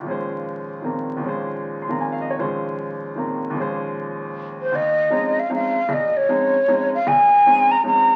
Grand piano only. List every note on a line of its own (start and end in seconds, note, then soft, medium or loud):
0.00 1.15 D#2 soft
0.00 0.80 A#2 soft
0.04 0.82 F3 soft
0.04 1.23 G#3 soft
0.08 1.23 C#4 soft
0.08 1.25 C5 soft
0.82 1.18 A#2 soft
0.82 1.21 D#3 soft
0.82 1.20 F3 soft
0.82 1.22 C4 soft
0.82 1.23 A#4 soft
1.17 2.36 D#2 soft
1.17 1.86 A#2 soft
1.22 1.87 F3 soft
1.22 2.38 G#3 soft
1.22 2.38 C#4 soft
1.29 2.38 C5 soft
1.82 1.94 C6 soft
1.87 2.37 A#2 soft
1.87 2.39 D#3 soft
1.87 2.38 F3 soft
1.87 2.40 C4 soft
1.87 2.40 A#4 soft
1.87 2.04 A#5 soft
2.01 2.17 G#5 soft
2.12 2.27 F5 soft
2.21 2.32 D#5 soft
2.30 2.43 C#5 soft
2.39 3.49 D#2 soft
2.39 3.14 A#2 soft
2.39 3.16 F3 soft
2.39 3.55 G#3 soft
2.39 3.56 C#4 soft
2.39 3.56 C5 medium
3.15 3.51 A#2 soft
3.15 3.55 D#3 soft
3.15 3.54 F3 soft
3.15 3.56 C4 soft
3.15 3.56 A#4 soft
3.50 4.69 D#2 medium
3.50 4.71 A#2 soft
3.55 4.72 F3 soft
3.55 4.73 G#3 soft
3.60 4.74 C#4 soft
3.60 4.75 C5 medium
4.72 5.06 D#2 medium
5.10 5.37 F3 soft
5.10 5.37 G#3 soft
5.10 5.37 C4 soft
5.10 5.37 C#4 soft
5.10 5.37 D#4 medium
5.49 5.76 F3 soft
5.49 5.76 G#3 soft
5.49 5.76 C4 soft
5.49 5.76 C#4 soft
5.49 5.76 D#4 soft
5.89 6.22 A#1 medium
6.29 6.54 F3 soft
6.29 6.54 G#3 soft
6.29 6.55 C4 soft
6.29 6.54 C#4 soft
6.29 6.55 D#4 medium
6.68 6.93 F3 soft
6.68 6.93 G#3 soft
6.68 6.93 C4 soft
6.68 6.93 C#4 soft
6.68 6.94 D#4 soft
7.07 7.40 A#1 medium
7.46 7.71 F3 soft
7.46 7.71 G#3 soft
7.46 7.71 C4 soft
7.46 7.71 C#4 soft
7.46 7.71 D#4 medium
7.84 8.10 F3 soft
7.84 8.10 G#3 soft
7.84 8.10 C4 soft
7.84 8.10 C#4 soft
7.84 8.10 D#4 soft